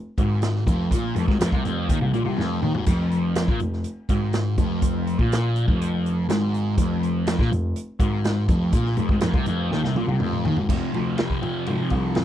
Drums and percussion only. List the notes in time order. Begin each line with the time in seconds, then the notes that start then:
0.18 kick, closed hi-hat
0.42 snare, closed hi-hat
0.56 snare
0.67 kick, closed hi-hat
0.91 kick, closed hi-hat
1.16 closed hi-hat
1.28 kick, snare
1.40 snare, closed hi-hat
1.52 kick
1.65 closed hi-hat
1.89 kick, closed hi-hat
2.14 closed hi-hat
2.40 snare
2.63 mid tom
2.74 floor tom
2.86 kick, closed hi-hat, crash
3.11 closed hi-hat
3.35 snare, closed hi-hat
3.48 kick
3.60 closed hi-hat
3.73 snare
3.84 closed hi-hat
4.09 kick, closed hi-hat
4.33 snare, closed hi-hat
4.58 kick, closed hi-hat
4.82 kick, closed hi-hat
5.07 closed hi-hat
5.19 kick
5.32 snare, closed hi-hat
5.56 closed hi-hat
5.68 kick
5.82 closed hi-hat
6.06 closed hi-hat
6.29 snare, closed hi-hat
6.54 closed hi-hat
6.78 kick, closed hi-hat
7.03 closed hi-hat
7.27 snare, closed hi-hat
7.39 kick, snare
7.52 closed hi-hat
7.76 closed hi-hat
8.00 kick, closed hi-hat
8.24 snare, closed hi-hat
8.49 kick, closed hi-hat
8.72 kick, closed hi-hat
8.85 snare
8.97 closed hi-hat
9.09 kick
9.20 snare, closed hi-hat
9.34 kick
9.46 closed hi-hat
9.72 snare
9.84 snare
9.96 high tom
10.09 high tom
10.20 mid tom
10.33 mid tom
10.45 floor tom
10.56 floor tom
10.69 kick, crash
10.94 ride
11.18 snare, ride
11.30 kick
11.43 ride
11.66 ride
11.90 kick, ride
12.15 snare, ride